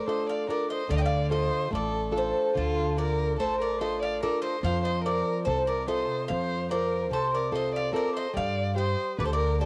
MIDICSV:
0, 0, Header, 1, 5, 480
1, 0, Start_track
1, 0, Tempo, 827472
1, 526, Time_signature, 9, 3, 24, 8
1, 5600, End_track
2, 0, Start_track
2, 0, Title_t, "Bouzouki"
2, 0, Program_c, 0, 25
2, 0, Note_on_c, 0, 62, 74
2, 52, Note_on_c, 0, 75, 80
2, 161, Note_off_c, 0, 75, 0
2, 170, Note_on_c, 0, 77, 83
2, 270, Note_off_c, 0, 62, 0
2, 280, Note_off_c, 0, 77, 0
2, 292, Note_on_c, 0, 74, 83
2, 405, Note_off_c, 0, 74, 0
2, 408, Note_on_c, 0, 75, 87
2, 524, Note_off_c, 0, 75, 0
2, 526, Note_on_c, 0, 77, 102
2, 564, Note_off_c, 0, 77, 0
2, 571, Note_on_c, 0, 79, 86
2, 610, Note_off_c, 0, 79, 0
2, 613, Note_on_c, 0, 77, 101
2, 758, Note_off_c, 0, 77, 0
2, 766, Note_on_c, 0, 75, 88
2, 989, Note_off_c, 0, 75, 0
2, 1016, Note_on_c, 0, 74, 90
2, 1235, Note_off_c, 0, 74, 0
2, 1262, Note_on_c, 0, 72, 85
2, 1490, Note_off_c, 0, 72, 0
2, 1493, Note_on_c, 0, 69, 83
2, 1713, Note_off_c, 0, 69, 0
2, 1730, Note_on_c, 0, 74, 92
2, 1952, Note_off_c, 0, 74, 0
2, 1971, Note_on_c, 0, 72, 94
2, 2081, Note_off_c, 0, 72, 0
2, 2097, Note_on_c, 0, 74, 85
2, 2208, Note_off_c, 0, 74, 0
2, 2210, Note_on_c, 0, 75, 85
2, 2331, Note_off_c, 0, 75, 0
2, 2334, Note_on_c, 0, 77, 85
2, 2448, Note_off_c, 0, 77, 0
2, 2450, Note_on_c, 0, 74, 86
2, 2559, Note_off_c, 0, 74, 0
2, 2561, Note_on_c, 0, 75, 86
2, 2675, Note_off_c, 0, 75, 0
2, 2693, Note_on_c, 0, 77, 99
2, 2801, Note_off_c, 0, 77, 0
2, 2813, Note_on_c, 0, 75, 89
2, 2921, Note_off_c, 0, 75, 0
2, 2934, Note_on_c, 0, 74, 90
2, 3153, Note_off_c, 0, 74, 0
2, 3161, Note_on_c, 0, 72, 85
2, 3275, Note_off_c, 0, 72, 0
2, 3290, Note_on_c, 0, 74, 88
2, 3409, Note_off_c, 0, 74, 0
2, 3412, Note_on_c, 0, 75, 85
2, 3641, Note_off_c, 0, 75, 0
2, 3644, Note_on_c, 0, 77, 95
2, 3868, Note_off_c, 0, 77, 0
2, 3893, Note_on_c, 0, 74, 91
2, 4136, Note_off_c, 0, 74, 0
2, 4137, Note_on_c, 0, 72, 94
2, 4255, Note_off_c, 0, 72, 0
2, 4261, Note_on_c, 0, 74, 84
2, 4365, Note_off_c, 0, 74, 0
2, 4382, Note_on_c, 0, 75, 84
2, 4486, Note_off_c, 0, 75, 0
2, 4503, Note_on_c, 0, 77, 81
2, 4606, Note_off_c, 0, 77, 0
2, 4618, Note_on_c, 0, 74, 82
2, 4724, Note_off_c, 0, 74, 0
2, 4738, Note_on_c, 0, 75, 88
2, 4853, Note_off_c, 0, 75, 0
2, 4855, Note_on_c, 0, 77, 102
2, 5074, Note_off_c, 0, 77, 0
2, 5094, Note_on_c, 0, 75, 85
2, 5313, Note_off_c, 0, 75, 0
2, 5337, Note_on_c, 0, 74, 92
2, 5367, Note_off_c, 0, 74, 0
2, 5370, Note_on_c, 0, 72, 75
2, 5409, Note_off_c, 0, 72, 0
2, 5413, Note_on_c, 0, 74, 93
2, 5572, Note_off_c, 0, 74, 0
2, 5575, Note_on_c, 0, 72, 80
2, 5600, Note_off_c, 0, 72, 0
2, 5600, End_track
3, 0, Start_track
3, 0, Title_t, "Violin"
3, 0, Program_c, 1, 40
3, 49, Note_on_c, 1, 72, 75
3, 159, Note_off_c, 1, 72, 0
3, 170, Note_on_c, 1, 74, 70
3, 280, Note_off_c, 1, 74, 0
3, 289, Note_on_c, 1, 70, 72
3, 399, Note_off_c, 1, 70, 0
3, 415, Note_on_c, 1, 72, 73
3, 522, Note_off_c, 1, 72, 0
3, 533, Note_on_c, 1, 74, 85
3, 560, Note_off_c, 1, 74, 0
3, 564, Note_on_c, 1, 75, 69
3, 601, Note_off_c, 1, 75, 0
3, 605, Note_on_c, 1, 74, 80
3, 754, Note_off_c, 1, 74, 0
3, 767, Note_on_c, 1, 72, 85
3, 990, Note_off_c, 1, 72, 0
3, 1013, Note_on_c, 1, 69, 87
3, 1233, Note_off_c, 1, 69, 0
3, 1248, Note_on_c, 1, 69, 71
3, 1470, Note_off_c, 1, 69, 0
3, 1488, Note_on_c, 1, 65, 80
3, 1711, Note_off_c, 1, 65, 0
3, 1737, Note_on_c, 1, 70, 80
3, 1955, Note_off_c, 1, 70, 0
3, 1965, Note_on_c, 1, 69, 81
3, 2077, Note_off_c, 1, 69, 0
3, 2090, Note_on_c, 1, 70, 73
3, 2200, Note_off_c, 1, 70, 0
3, 2209, Note_on_c, 1, 72, 79
3, 2319, Note_off_c, 1, 72, 0
3, 2329, Note_on_c, 1, 74, 80
3, 2439, Note_off_c, 1, 74, 0
3, 2451, Note_on_c, 1, 70, 80
3, 2560, Note_off_c, 1, 70, 0
3, 2573, Note_on_c, 1, 72, 79
3, 2682, Note_off_c, 1, 72, 0
3, 2687, Note_on_c, 1, 72, 81
3, 2798, Note_off_c, 1, 72, 0
3, 2804, Note_on_c, 1, 72, 74
3, 2917, Note_off_c, 1, 72, 0
3, 2921, Note_on_c, 1, 70, 82
3, 3146, Note_off_c, 1, 70, 0
3, 3169, Note_on_c, 1, 69, 83
3, 3279, Note_off_c, 1, 69, 0
3, 3295, Note_on_c, 1, 70, 80
3, 3402, Note_off_c, 1, 70, 0
3, 3416, Note_on_c, 1, 72, 75
3, 3634, Note_off_c, 1, 72, 0
3, 3658, Note_on_c, 1, 72, 89
3, 3876, Note_off_c, 1, 72, 0
3, 3898, Note_on_c, 1, 70, 79
3, 4116, Note_off_c, 1, 70, 0
3, 4133, Note_on_c, 1, 69, 77
3, 4241, Note_off_c, 1, 69, 0
3, 4256, Note_on_c, 1, 70, 73
3, 4363, Note_off_c, 1, 70, 0
3, 4376, Note_on_c, 1, 72, 74
3, 4483, Note_off_c, 1, 72, 0
3, 4494, Note_on_c, 1, 74, 78
3, 4602, Note_off_c, 1, 74, 0
3, 4611, Note_on_c, 1, 70, 82
3, 4720, Note_off_c, 1, 70, 0
3, 4732, Note_on_c, 1, 72, 74
3, 4841, Note_off_c, 1, 72, 0
3, 4850, Note_on_c, 1, 74, 84
3, 5071, Note_off_c, 1, 74, 0
3, 5089, Note_on_c, 1, 72, 84
3, 5311, Note_off_c, 1, 72, 0
3, 5330, Note_on_c, 1, 71, 81
3, 5366, Note_off_c, 1, 71, 0
3, 5371, Note_on_c, 1, 69, 68
3, 5407, Note_off_c, 1, 69, 0
3, 5421, Note_on_c, 1, 70, 91
3, 5562, Note_off_c, 1, 70, 0
3, 5578, Note_on_c, 1, 69, 72
3, 5600, Note_off_c, 1, 69, 0
3, 5600, End_track
4, 0, Start_track
4, 0, Title_t, "Nylon-string guitar"
4, 0, Program_c, 2, 24
4, 0, Note_on_c, 2, 57, 63
4, 44, Note_on_c, 2, 62, 44
4, 45, Note_on_c, 2, 69, 50
4, 47, Note_on_c, 2, 65, 40
4, 271, Note_off_c, 2, 57, 0
4, 275, Note_off_c, 2, 62, 0
4, 281, Note_off_c, 2, 69, 0
4, 282, Note_off_c, 2, 65, 0
4, 282, Note_on_c, 2, 62, 50
4, 287, Note_on_c, 2, 65, 44
4, 289, Note_on_c, 2, 69, 51
4, 476, Note_off_c, 2, 62, 0
4, 479, Note_off_c, 2, 69, 0
4, 480, Note_off_c, 2, 65, 0
4, 518, Note_on_c, 2, 50, 65
4, 760, Note_on_c, 2, 65, 48
4, 761, Note_on_c, 2, 69, 54
4, 987, Note_off_c, 2, 50, 0
4, 991, Note_on_c, 2, 57, 66
4, 1147, Note_off_c, 2, 65, 0
4, 1147, Note_off_c, 2, 69, 0
4, 1229, Note_on_c, 2, 62, 52
4, 1232, Note_on_c, 2, 65, 46
4, 1233, Note_on_c, 2, 69, 59
4, 1464, Note_off_c, 2, 57, 0
4, 1480, Note_on_c, 2, 50, 60
4, 1620, Note_off_c, 2, 62, 0
4, 1622, Note_off_c, 2, 65, 0
4, 1622, Note_off_c, 2, 69, 0
4, 1725, Note_on_c, 2, 62, 46
4, 1729, Note_on_c, 2, 65, 41
4, 1949, Note_off_c, 2, 50, 0
4, 1972, Note_on_c, 2, 57, 69
4, 2109, Note_off_c, 2, 62, 0
4, 2112, Note_off_c, 2, 65, 0
4, 2205, Note_on_c, 2, 62, 45
4, 2209, Note_on_c, 2, 65, 45
4, 2212, Note_on_c, 2, 69, 54
4, 2434, Note_off_c, 2, 57, 0
4, 2445, Note_off_c, 2, 69, 0
4, 2446, Note_off_c, 2, 62, 0
4, 2447, Note_off_c, 2, 65, 0
4, 2453, Note_on_c, 2, 62, 53
4, 2453, Note_on_c, 2, 69, 57
4, 2454, Note_on_c, 2, 65, 48
4, 2641, Note_off_c, 2, 69, 0
4, 2642, Note_off_c, 2, 62, 0
4, 2643, Note_off_c, 2, 65, 0
4, 2696, Note_on_c, 2, 53, 67
4, 2935, Note_on_c, 2, 60, 53
4, 2938, Note_on_c, 2, 65, 47
4, 2942, Note_on_c, 2, 72, 55
4, 3157, Note_off_c, 2, 53, 0
4, 3175, Note_on_c, 2, 48, 63
4, 3316, Note_off_c, 2, 60, 0
4, 3317, Note_off_c, 2, 65, 0
4, 3320, Note_off_c, 2, 72, 0
4, 3408, Note_on_c, 2, 60, 51
4, 3411, Note_on_c, 2, 65, 49
4, 3415, Note_on_c, 2, 69, 57
4, 3636, Note_off_c, 2, 48, 0
4, 3660, Note_on_c, 2, 53, 66
4, 3792, Note_off_c, 2, 60, 0
4, 3792, Note_off_c, 2, 65, 0
4, 3793, Note_off_c, 2, 69, 0
4, 3890, Note_on_c, 2, 60, 49
4, 3894, Note_on_c, 2, 65, 46
4, 3897, Note_on_c, 2, 72, 52
4, 4119, Note_off_c, 2, 53, 0
4, 4124, Note_on_c, 2, 48, 68
4, 4272, Note_off_c, 2, 60, 0
4, 4275, Note_off_c, 2, 65, 0
4, 4276, Note_off_c, 2, 72, 0
4, 4363, Note_on_c, 2, 60, 48
4, 4364, Note_on_c, 2, 65, 46
4, 4364, Note_on_c, 2, 69, 54
4, 4591, Note_off_c, 2, 48, 0
4, 4592, Note_off_c, 2, 60, 0
4, 4595, Note_off_c, 2, 65, 0
4, 4598, Note_off_c, 2, 69, 0
4, 4599, Note_on_c, 2, 60, 52
4, 4602, Note_on_c, 2, 65, 49
4, 4605, Note_on_c, 2, 69, 62
4, 4794, Note_off_c, 2, 60, 0
4, 4795, Note_off_c, 2, 65, 0
4, 4797, Note_off_c, 2, 69, 0
4, 4836, Note_on_c, 2, 55, 69
4, 5083, Note_on_c, 2, 67, 48
4, 5307, Note_off_c, 2, 55, 0
4, 5330, Note_on_c, 2, 50, 60
4, 5468, Note_off_c, 2, 67, 0
4, 5569, Note_on_c, 2, 62, 53
4, 5574, Note_on_c, 2, 67, 47
4, 5577, Note_on_c, 2, 74, 58
4, 5600, Note_off_c, 2, 50, 0
4, 5600, Note_off_c, 2, 62, 0
4, 5600, Note_off_c, 2, 67, 0
4, 5600, Note_off_c, 2, 74, 0
4, 5600, End_track
5, 0, Start_track
5, 0, Title_t, "Upright bass"
5, 0, Program_c, 3, 32
5, 523, Note_on_c, 3, 38, 98
5, 860, Note_off_c, 3, 38, 0
5, 1003, Note_on_c, 3, 33, 93
5, 1340, Note_off_c, 3, 33, 0
5, 1491, Note_on_c, 3, 38, 85
5, 1973, Note_off_c, 3, 38, 0
5, 1973, Note_on_c, 3, 33, 97
5, 2475, Note_off_c, 3, 33, 0
5, 2686, Note_on_c, 3, 41, 102
5, 3022, Note_off_c, 3, 41, 0
5, 3171, Note_on_c, 3, 36, 95
5, 3505, Note_off_c, 3, 36, 0
5, 3655, Note_on_c, 3, 41, 90
5, 4133, Note_off_c, 3, 41, 0
5, 4133, Note_on_c, 3, 36, 102
5, 4634, Note_off_c, 3, 36, 0
5, 4853, Note_on_c, 3, 43, 96
5, 5187, Note_off_c, 3, 43, 0
5, 5329, Note_on_c, 3, 38, 99
5, 5600, Note_off_c, 3, 38, 0
5, 5600, End_track
0, 0, End_of_file